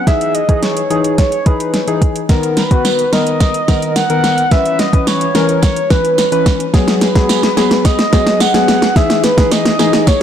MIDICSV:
0, 0, Header, 1, 4, 480
1, 0, Start_track
1, 0, Tempo, 555556
1, 61, Time_signature, 4, 2, 24, 8
1, 8836, End_track
2, 0, Start_track
2, 0, Title_t, "Soft synth lead"
2, 0, Program_c, 0, 80
2, 60, Note_on_c, 0, 76, 113
2, 300, Note_on_c, 0, 75, 102
2, 313, Note_off_c, 0, 76, 0
2, 541, Note_on_c, 0, 73, 101
2, 554, Note_off_c, 0, 75, 0
2, 1015, Note_off_c, 0, 73, 0
2, 1021, Note_on_c, 0, 73, 97
2, 1261, Note_on_c, 0, 71, 86
2, 1274, Note_off_c, 0, 73, 0
2, 1741, Note_off_c, 0, 71, 0
2, 2222, Note_on_c, 0, 71, 100
2, 2702, Note_on_c, 0, 75, 107
2, 2715, Note_off_c, 0, 71, 0
2, 3416, Note_off_c, 0, 75, 0
2, 3421, Note_on_c, 0, 78, 116
2, 3900, Note_on_c, 0, 76, 116
2, 3913, Note_off_c, 0, 78, 0
2, 4140, Note_on_c, 0, 75, 103
2, 4153, Note_off_c, 0, 76, 0
2, 4380, Note_on_c, 0, 73, 106
2, 4393, Note_off_c, 0, 75, 0
2, 4856, Note_off_c, 0, 73, 0
2, 4861, Note_on_c, 0, 73, 99
2, 5101, Note_on_c, 0, 71, 90
2, 5114, Note_off_c, 0, 73, 0
2, 5581, Note_off_c, 0, 71, 0
2, 6062, Note_on_c, 0, 71, 104
2, 6782, Note_on_c, 0, 75, 110
2, 6795, Note_off_c, 0, 71, 0
2, 7263, Note_on_c, 0, 78, 124
2, 7276, Note_off_c, 0, 75, 0
2, 7742, Note_on_c, 0, 76, 109
2, 7755, Note_off_c, 0, 78, 0
2, 7977, Note_off_c, 0, 76, 0
2, 7982, Note_on_c, 0, 71, 96
2, 8223, Note_on_c, 0, 75, 105
2, 8235, Note_off_c, 0, 71, 0
2, 8702, Note_on_c, 0, 73, 101
2, 8715, Note_off_c, 0, 75, 0
2, 8836, Note_off_c, 0, 73, 0
2, 8836, End_track
3, 0, Start_track
3, 0, Title_t, "Synth keys"
3, 0, Program_c, 1, 88
3, 59, Note_on_c, 1, 52, 73
3, 61, Note_on_c, 1, 63, 69
3, 63, Note_on_c, 1, 68, 84
3, 342, Note_off_c, 1, 52, 0
3, 344, Note_off_c, 1, 63, 0
3, 345, Note_off_c, 1, 68, 0
3, 419, Note_on_c, 1, 52, 79
3, 421, Note_on_c, 1, 63, 73
3, 423, Note_on_c, 1, 68, 87
3, 702, Note_off_c, 1, 52, 0
3, 704, Note_off_c, 1, 63, 0
3, 705, Note_off_c, 1, 68, 0
3, 779, Note_on_c, 1, 52, 76
3, 782, Note_on_c, 1, 63, 68
3, 784, Note_on_c, 1, 68, 84
3, 1157, Note_off_c, 1, 52, 0
3, 1158, Note_off_c, 1, 63, 0
3, 1159, Note_off_c, 1, 68, 0
3, 1259, Note_on_c, 1, 52, 76
3, 1262, Note_on_c, 1, 63, 71
3, 1264, Note_on_c, 1, 68, 84
3, 1543, Note_off_c, 1, 52, 0
3, 1544, Note_off_c, 1, 63, 0
3, 1545, Note_off_c, 1, 68, 0
3, 1619, Note_on_c, 1, 52, 75
3, 1621, Note_on_c, 1, 63, 69
3, 1624, Note_on_c, 1, 68, 83
3, 1903, Note_off_c, 1, 52, 0
3, 1904, Note_off_c, 1, 63, 0
3, 1905, Note_off_c, 1, 68, 0
3, 1979, Note_on_c, 1, 51, 95
3, 1982, Note_on_c, 1, 59, 79
3, 1984, Note_on_c, 1, 70, 98
3, 2263, Note_off_c, 1, 51, 0
3, 2264, Note_off_c, 1, 59, 0
3, 2265, Note_off_c, 1, 70, 0
3, 2340, Note_on_c, 1, 51, 79
3, 2342, Note_on_c, 1, 59, 71
3, 2345, Note_on_c, 1, 66, 86
3, 2623, Note_off_c, 1, 51, 0
3, 2624, Note_off_c, 1, 59, 0
3, 2625, Note_off_c, 1, 66, 0
3, 2700, Note_on_c, 1, 51, 75
3, 2702, Note_on_c, 1, 59, 69
3, 2704, Note_on_c, 1, 70, 83
3, 3077, Note_off_c, 1, 51, 0
3, 3078, Note_off_c, 1, 59, 0
3, 3079, Note_off_c, 1, 70, 0
3, 3179, Note_on_c, 1, 51, 79
3, 3182, Note_on_c, 1, 59, 70
3, 3184, Note_on_c, 1, 70, 86
3, 3463, Note_off_c, 1, 51, 0
3, 3464, Note_off_c, 1, 59, 0
3, 3465, Note_off_c, 1, 70, 0
3, 3539, Note_on_c, 1, 51, 76
3, 3542, Note_on_c, 1, 59, 71
3, 3544, Note_on_c, 1, 70, 82
3, 3823, Note_off_c, 1, 51, 0
3, 3824, Note_off_c, 1, 59, 0
3, 3825, Note_off_c, 1, 70, 0
3, 3900, Note_on_c, 1, 52, 74
3, 3902, Note_on_c, 1, 61, 73
3, 3904, Note_on_c, 1, 71, 87
3, 4183, Note_off_c, 1, 52, 0
3, 4184, Note_off_c, 1, 61, 0
3, 4185, Note_off_c, 1, 71, 0
3, 4260, Note_on_c, 1, 52, 79
3, 4262, Note_on_c, 1, 61, 72
3, 4264, Note_on_c, 1, 71, 91
3, 4543, Note_off_c, 1, 52, 0
3, 4544, Note_off_c, 1, 61, 0
3, 4545, Note_off_c, 1, 71, 0
3, 4620, Note_on_c, 1, 52, 80
3, 4622, Note_on_c, 1, 61, 70
3, 4624, Note_on_c, 1, 70, 83
3, 4997, Note_off_c, 1, 52, 0
3, 4998, Note_off_c, 1, 61, 0
3, 4999, Note_off_c, 1, 70, 0
3, 5099, Note_on_c, 1, 52, 82
3, 5102, Note_on_c, 1, 61, 72
3, 5103, Note_on_c, 1, 71, 88
3, 5383, Note_off_c, 1, 52, 0
3, 5384, Note_off_c, 1, 61, 0
3, 5385, Note_off_c, 1, 71, 0
3, 5459, Note_on_c, 1, 52, 76
3, 5462, Note_on_c, 1, 61, 72
3, 5464, Note_on_c, 1, 71, 88
3, 5743, Note_off_c, 1, 52, 0
3, 5744, Note_off_c, 1, 61, 0
3, 5745, Note_off_c, 1, 71, 0
3, 5819, Note_on_c, 1, 54, 94
3, 5821, Note_on_c, 1, 59, 86
3, 5824, Note_on_c, 1, 68, 103
3, 6103, Note_off_c, 1, 54, 0
3, 6104, Note_off_c, 1, 59, 0
3, 6105, Note_off_c, 1, 68, 0
3, 6179, Note_on_c, 1, 54, 79
3, 6181, Note_on_c, 1, 59, 73
3, 6184, Note_on_c, 1, 68, 94
3, 6463, Note_off_c, 1, 54, 0
3, 6464, Note_off_c, 1, 59, 0
3, 6465, Note_off_c, 1, 68, 0
3, 6539, Note_on_c, 1, 54, 76
3, 6541, Note_on_c, 1, 59, 74
3, 6543, Note_on_c, 1, 68, 85
3, 6916, Note_off_c, 1, 54, 0
3, 6918, Note_off_c, 1, 59, 0
3, 6919, Note_off_c, 1, 68, 0
3, 7019, Note_on_c, 1, 54, 81
3, 7021, Note_on_c, 1, 59, 70
3, 7024, Note_on_c, 1, 68, 89
3, 7303, Note_off_c, 1, 54, 0
3, 7304, Note_off_c, 1, 59, 0
3, 7305, Note_off_c, 1, 68, 0
3, 7379, Note_on_c, 1, 54, 80
3, 7381, Note_on_c, 1, 59, 77
3, 7384, Note_on_c, 1, 68, 84
3, 7663, Note_off_c, 1, 54, 0
3, 7664, Note_off_c, 1, 59, 0
3, 7665, Note_off_c, 1, 68, 0
3, 7739, Note_on_c, 1, 52, 82
3, 7742, Note_on_c, 1, 63, 71
3, 7744, Note_on_c, 1, 68, 88
3, 8023, Note_off_c, 1, 52, 0
3, 8024, Note_off_c, 1, 63, 0
3, 8025, Note_off_c, 1, 68, 0
3, 8099, Note_on_c, 1, 52, 84
3, 8101, Note_on_c, 1, 63, 74
3, 8104, Note_on_c, 1, 68, 91
3, 8383, Note_off_c, 1, 52, 0
3, 8384, Note_off_c, 1, 63, 0
3, 8385, Note_off_c, 1, 68, 0
3, 8459, Note_on_c, 1, 52, 76
3, 8461, Note_on_c, 1, 63, 70
3, 8463, Note_on_c, 1, 68, 87
3, 8836, Note_off_c, 1, 52, 0
3, 8836, Note_off_c, 1, 63, 0
3, 8836, Note_off_c, 1, 68, 0
3, 8836, End_track
4, 0, Start_track
4, 0, Title_t, "Drums"
4, 61, Note_on_c, 9, 36, 111
4, 61, Note_on_c, 9, 38, 74
4, 61, Note_on_c, 9, 42, 85
4, 147, Note_off_c, 9, 36, 0
4, 147, Note_off_c, 9, 42, 0
4, 148, Note_off_c, 9, 38, 0
4, 182, Note_on_c, 9, 42, 55
4, 269, Note_off_c, 9, 42, 0
4, 299, Note_on_c, 9, 42, 81
4, 386, Note_off_c, 9, 42, 0
4, 422, Note_on_c, 9, 36, 86
4, 422, Note_on_c, 9, 42, 63
4, 508, Note_off_c, 9, 36, 0
4, 508, Note_off_c, 9, 42, 0
4, 541, Note_on_c, 9, 38, 80
4, 541, Note_on_c, 9, 42, 84
4, 627, Note_off_c, 9, 42, 0
4, 628, Note_off_c, 9, 38, 0
4, 662, Note_on_c, 9, 42, 54
4, 748, Note_off_c, 9, 42, 0
4, 782, Note_on_c, 9, 42, 67
4, 868, Note_off_c, 9, 42, 0
4, 902, Note_on_c, 9, 42, 51
4, 988, Note_off_c, 9, 42, 0
4, 1022, Note_on_c, 9, 38, 83
4, 1022, Note_on_c, 9, 42, 101
4, 1023, Note_on_c, 9, 36, 88
4, 1108, Note_off_c, 9, 38, 0
4, 1108, Note_off_c, 9, 42, 0
4, 1109, Note_off_c, 9, 36, 0
4, 1141, Note_on_c, 9, 42, 51
4, 1227, Note_off_c, 9, 42, 0
4, 1262, Note_on_c, 9, 42, 71
4, 1263, Note_on_c, 9, 36, 97
4, 1348, Note_off_c, 9, 42, 0
4, 1350, Note_off_c, 9, 36, 0
4, 1384, Note_on_c, 9, 42, 57
4, 1470, Note_off_c, 9, 42, 0
4, 1501, Note_on_c, 9, 38, 77
4, 1501, Note_on_c, 9, 42, 92
4, 1587, Note_off_c, 9, 42, 0
4, 1588, Note_off_c, 9, 38, 0
4, 1621, Note_on_c, 9, 42, 54
4, 1707, Note_off_c, 9, 42, 0
4, 1742, Note_on_c, 9, 36, 84
4, 1743, Note_on_c, 9, 42, 75
4, 1829, Note_off_c, 9, 36, 0
4, 1829, Note_off_c, 9, 42, 0
4, 1863, Note_on_c, 9, 42, 52
4, 1949, Note_off_c, 9, 42, 0
4, 1980, Note_on_c, 9, 54, 30
4, 1981, Note_on_c, 9, 36, 114
4, 1981, Note_on_c, 9, 38, 88
4, 1981, Note_on_c, 9, 42, 85
4, 2067, Note_off_c, 9, 38, 0
4, 2067, Note_off_c, 9, 42, 0
4, 2067, Note_off_c, 9, 54, 0
4, 2068, Note_off_c, 9, 36, 0
4, 2102, Note_on_c, 9, 42, 60
4, 2188, Note_off_c, 9, 42, 0
4, 2219, Note_on_c, 9, 42, 88
4, 2221, Note_on_c, 9, 38, 90
4, 2224, Note_on_c, 9, 54, 33
4, 2306, Note_off_c, 9, 42, 0
4, 2308, Note_off_c, 9, 38, 0
4, 2311, Note_off_c, 9, 54, 0
4, 2341, Note_on_c, 9, 42, 64
4, 2342, Note_on_c, 9, 36, 94
4, 2428, Note_off_c, 9, 36, 0
4, 2428, Note_off_c, 9, 42, 0
4, 2461, Note_on_c, 9, 38, 86
4, 2461, Note_on_c, 9, 42, 89
4, 2461, Note_on_c, 9, 54, 82
4, 2547, Note_off_c, 9, 42, 0
4, 2548, Note_off_c, 9, 38, 0
4, 2548, Note_off_c, 9, 54, 0
4, 2582, Note_on_c, 9, 42, 55
4, 2668, Note_off_c, 9, 42, 0
4, 2700, Note_on_c, 9, 54, 54
4, 2702, Note_on_c, 9, 38, 88
4, 2702, Note_on_c, 9, 42, 67
4, 2786, Note_off_c, 9, 54, 0
4, 2788, Note_off_c, 9, 38, 0
4, 2788, Note_off_c, 9, 42, 0
4, 2822, Note_on_c, 9, 42, 53
4, 2908, Note_off_c, 9, 42, 0
4, 2940, Note_on_c, 9, 54, 49
4, 2942, Note_on_c, 9, 38, 92
4, 2942, Note_on_c, 9, 42, 101
4, 2943, Note_on_c, 9, 36, 91
4, 3026, Note_off_c, 9, 54, 0
4, 3028, Note_off_c, 9, 38, 0
4, 3028, Note_off_c, 9, 42, 0
4, 3029, Note_off_c, 9, 36, 0
4, 3061, Note_on_c, 9, 42, 52
4, 3147, Note_off_c, 9, 42, 0
4, 3180, Note_on_c, 9, 54, 53
4, 3181, Note_on_c, 9, 38, 92
4, 3181, Note_on_c, 9, 42, 72
4, 3183, Note_on_c, 9, 36, 99
4, 3267, Note_off_c, 9, 54, 0
4, 3268, Note_off_c, 9, 38, 0
4, 3268, Note_off_c, 9, 42, 0
4, 3270, Note_off_c, 9, 36, 0
4, 3304, Note_on_c, 9, 42, 60
4, 3390, Note_off_c, 9, 42, 0
4, 3420, Note_on_c, 9, 54, 87
4, 3421, Note_on_c, 9, 38, 91
4, 3421, Note_on_c, 9, 42, 99
4, 3506, Note_off_c, 9, 54, 0
4, 3507, Note_off_c, 9, 42, 0
4, 3508, Note_off_c, 9, 38, 0
4, 3540, Note_on_c, 9, 42, 53
4, 3627, Note_off_c, 9, 42, 0
4, 3660, Note_on_c, 9, 54, 47
4, 3661, Note_on_c, 9, 38, 90
4, 3663, Note_on_c, 9, 42, 76
4, 3747, Note_off_c, 9, 54, 0
4, 3748, Note_off_c, 9, 38, 0
4, 3749, Note_off_c, 9, 42, 0
4, 3783, Note_on_c, 9, 42, 54
4, 3869, Note_off_c, 9, 42, 0
4, 3901, Note_on_c, 9, 36, 117
4, 3901, Note_on_c, 9, 38, 94
4, 3901, Note_on_c, 9, 42, 89
4, 3987, Note_off_c, 9, 36, 0
4, 3987, Note_off_c, 9, 38, 0
4, 3987, Note_off_c, 9, 42, 0
4, 4022, Note_on_c, 9, 42, 58
4, 4108, Note_off_c, 9, 42, 0
4, 4139, Note_on_c, 9, 42, 88
4, 4141, Note_on_c, 9, 38, 92
4, 4226, Note_off_c, 9, 42, 0
4, 4228, Note_off_c, 9, 38, 0
4, 4262, Note_on_c, 9, 36, 95
4, 4262, Note_on_c, 9, 42, 67
4, 4348, Note_off_c, 9, 36, 0
4, 4348, Note_off_c, 9, 42, 0
4, 4380, Note_on_c, 9, 54, 76
4, 4381, Note_on_c, 9, 42, 92
4, 4382, Note_on_c, 9, 38, 99
4, 4467, Note_off_c, 9, 42, 0
4, 4467, Note_off_c, 9, 54, 0
4, 4468, Note_off_c, 9, 38, 0
4, 4502, Note_on_c, 9, 42, 59
4, 4588, Note_off_c, 9, 42, 0
4, 4619, Note_on_c, 9, 54, 55
4, 4622, Note_on_c, 9, 38, 102
4, 4622, Note_on_c, 9, 42, 69
4, 4706, Note_off_c, 9, 54, 0
4, 4708, Note_off_c, 9, 38, 0
4, 4708, Note_off_c, 9, 42, 0
4, 4741, Note_on_c, 9, 42, 52
4, 4828, Note_off_c, 9, 42, 0
4, 4859, Note_on_c, 9, 54, 50
4, 4861, Note_on_c, 9, 38, 97
4, 4861, Note_on_c, 9, 42, 99
4, 4862, Note_on_c, 9, 36, 94
4, 4945, Note_off_c, 9, 54, 0
4, 4948, Note_off_c, 9, 38, 0
4, 4948, Note_off_c, 9, 42, 0
4, 4949, Note_off_c, 9, 36, 0
4, 4981, Note_on_c, 9, 42, 55
4, 5067, Note_off_c, 9, 42, 0
4, 5100, Note_on_c, 9, 54, 52
4, 5101, Note_on_c, 9, 38, 103
4, 5101, Note_on_c, 9, 42, 71
4, 5103, Note_on_c, 9, 36, 102
4, 5187, Note_off_c, 9, 54, 0
4, 5188, Note_off_c, 9, 38, 0
4, 5188, Note_off_c, 9, 42, 0
4, 5190, Note_off_c, 9, 36, 0
4, 5224, Note_on_c, 9, 42, 57
4, 5310, Note_off_c, 9, 42, 0
4, 5339, Note_on_c, 9, 54, 92
4, 5341, Note_on_c, 9, 42, 94
4, 5342, Note_on_c, 9, 38, 95
4, 5426, Note_off_c, 9, 54, 0
4, 5427, Note_off_c, 9, 42, 0
4, 5428, Note_off_c, 9, 38, 0
4, 5461, Note_on_c, 9, 42, 54
4, 5547, Note_off_c, 9, 42, 0
4, 5581, Note_on_c, 9, 54, 49
4, 5582, Note_on_c, 9, 36, 86
4, 5582, Note_on_c, 9, 38, 102
4, 5583, Note_on_c, 9, 42, 75
4, 5667, Note_off_c, 9, 54, 0
4, 5668, Note_off_c, 9, 38, 0
4, 5669, Note_off_c, 9, 36, 0
4, 5669, Note_off_c, 9, 42, 0
4, 5703, Note_on_c, 9, 42, 53
4, 5790, Note_off_c, 9, 42, 0
4, 5820, Note_on_c, 9, 54, 30
4, 5821, Note_on_c, 9, 36, 122
4, 5821, Note_on_c, 9, 42, 86
4, 5822, Note_on_c, 9, 38, 107
4, 5907, Note_off_c, 9, 54, 0
4, 5908, Note_off_c, 9, 36, 0
4, 5908, Note_off_c, 9, 38, 0
4, 5908, Note_off_c, 9, 42, 0
4, 5942, Note_on_c, 9, 38, 101
4, 5942, Note_on_c, 9, 42, 60
4, 6028, Note_off_c, 9, 38, 0
4, 6029, Note_off_c, 9, 42, 0
4, 6059, Note_on_c, 9, 42, 86
4, 6061, Note_on_c, 9, 38, 108
4, 6064, Note_on_c, 9, 54, 32
4, 6146, Note_off_c, 9, 42, 0
4, 6148, Note_off_c, 9, 38, 0
4, 6150, Note_off_c, 9, 54, 0
4, 6182, Note_on_c, 9, 36, 96
4, 6182, Note_on_c, 9, 38, 105
4, 6182, Note_on_c, 9, 42, 65
4, 6268, Note_off_c, 9, 36, 0
4, 6268, Note_off_c, 9, 38, 0
4, 6268, Note_off_c, 9, 42, 0
4, 6301, Note_on_c, 9, 42, 93
4, 6301, Note_on_c, 9, 54, 81
4, 6302, Note_on_c, 9, 38, 102
4, 6387, Note_off_c, 9, 54, 0
4, 6388, Note_off_c, 9, 38, 0
4, 6388, Note_off_c, 9, 42, 0
4, 6422, Note_on_c, 9, 38, 107
4, 6422, Note_on_c, 9, 42, 57
4, 6508, Note_off_c, 9, 38, 0
4, 6509, Note_off_c, 9, 42, 0
4, 6540, Note_on_c, 9, 54, 57
4, 6542, Note_on_c, 9, 38, 108
4, 6542, Note_on_c, 9, 42, 69
4, 6626, Note_off_c, 9, 54, 0
4, 6628, Note_off_c, 9, 38, 0
4, 6629, Note_off_c, 9, 42, 0
4, 6662, Note_on_c, 9, 38, 106
4, 6662, Note_on_c, 9, 42, 52
4, 6748, Note_off_c, 9, 38, 0
4, 6749, Note_off_c, 9, 42, 0
4, 6779, Note_on_c, 9, 54, 49
4, 6782, Note_on_c, 9, 38, 107
4, 6782, Note_on_c, 9, 42, 104
4, 6783, Note_on_c, 9, 36, 92
4, 6866, Note_off_c, 9, 54, 0
4, 6868, Note_off_c, 9, 38, 0
4, 6868, Note_off_c, 9, 42, 0
4, 6869, Note_off_c, 9, 36, 0
4, 6901, Note_on_c, 9, 42, 54
4, 6902, Note_on_c, 9, 38, 108
4, 6987, Note_off_c, 9, 42, 0
4, 6988, Note_off_c, 9, 38, 0
4, 7021, Note_on_c, 9, 54, 51
4, 7022, Note_on_c, 9, 38, 113
4, 7022, Note_on_c, 9, 42, 73
4, 7023, Note_on_c, 9, 36, 102
4, 7108, Note_off_c, 9, 38, 0
4, 7108, Note_off_c, 9, 42, 0
4, 7108, Note_off_c, 9, 54, 0
4, 7110, Note_off_c, 9, 36, 0
4, 7142, Note_on_c, 9, 38, 108
4, 7144, Note_on_c, 9, 42, 57
4, 7228, Note_off_c, 9, 38, 0
4, 7230, Note_off_c, 9, 42, 0
4, 7260, Note_on_c, 9, 54, 87
4, 7261, Note_on_c, 9, 42, 97
4, 7262, Note_on_c, 9, 38, 103
4, 7347, Note_off_c, 9, 54, 0
4, 7348, Note_off_c, 9, 38, 0
4, 7348, Note_off_c, 9, 42, 0
4, 7381, Note_on_c, 9, 42, 56
4, 7382, Note_on_c, 9, 38, 110
4, 7467, Note_off_c, 9, 42, 0
4, 7468, Note_off_c, 9, 38, 0
4, 7501, Note_on_c, 9, 54, 49
4, 7502, Note_on_c, 9, 38, 115
4, 7503, Note_on_c, 9, 42, 77
4, 7588, Note_off_c, 9, 38, 0
4, 7588, Note_off_c, 9, 54, 0
4, 7589, Note_off_c, 9, 42, 0
4, 7622, Note_on_c, 9, 38, 109
4, 7623, Note_on_c, 9, 42, 51
4, 7708, Note_off_c, 9, 38, 0
4, 7709, Note_off_c, 9, 42, 0
4, 7741, Note_on_c, 9, 36, 119
4, 7741, Note_on_c, 9, 42, 91
4, 7742, Note_on_c, 9, 38, 112
4, 7828, Note_off_c, 9, 36, 0
4, 7828, Note_off_c, 9, 38, 0
4, 7828, Note_off_c, 9, 42, 0
4, 7862, Note_on_c, 9, 38, 114
4, 7862, Note_on_c, 9, 42, 58
4, 7948, Note_off_c, 9, 38, 0
4, 7949, Note_off_c, 9, 42, 0
4, 7979, Note_on_c, 9, 42, 90
4, 7981, Note_on_c, 9, 38, 114
4, 7985, Note_on_c, 9, 54, 33
4, 8066, Note_off_c, 9, 42, 0
4, 8068, Note_off_c, 9, 38, 0
4, 8071, Note_off_c, 9, 54, 0
4, 8101, Note_on_c, 9, 38, 110
4, 8102, Note_on_c, 9, 36, 96
4, 8102, Note_on_c, 9, 42, 67
4, 8188, Note_off_c, 9, 36, 0
4, 8188, Note_off_c, 9, 38, 0
4, 8188, Note_off_c, 9, 42, 0
4, 8221, Note_on_c, 9, 42, 97
4, 8221, Note_on_c, 9, 54, 80
4, 8222, Note_on_c, 9, 38, 113
4, 8307, Note_off_c, 9, 42, 0
4, 8307, Note_off_c, 9, 54, 0
4, 8308, Note_off_c, 9, 38, 0
4, 8342, Note_on_c, 9, 38, 115
4, 8342, Note_on_c, 9, 42, 57
4, 8428, Note_off_c, 9, 38, 0
4, 8429, Note_off_c, 9, 42, 0
4, 8459, Note_on_c, 9, 54, 60
4, 8462, Note_on_c, 9, 38, 116
4, 8462, Note_on_c, 9, 42, 68
4, 8546, Note_off_c, 9, 54, 0
4, 8548, Note_off_c, 9, 38, 0
4, 8549, Note_off_c, 9, 42, 0
4, 8582, Note_on_c, 9, 38, 112
4, 8582, Note_on_c, 9, 42, 53
4, 8668, Note_off_c, 9, 38, 0
4, 8668, Note_off_c, 9, 42, 0
4, 8699, Note_on_c, 9, 54, 52
4, 8702, Note_on_c, 9, 38, 116
4, 8702, Note_on_c, 9, 42, 102
4, 8703, Note_on_c, 9, 36, 100
4, 8786, Note_off_c, 9, 54, 0
4, 8788, Note_off_c, 9, 38, 0
4, 8788, Note_off_c, 9, 42, 0
4, 8789, Note_off_c, 9, 36, 0
4, 8836, End_track
0, 0, End_of_file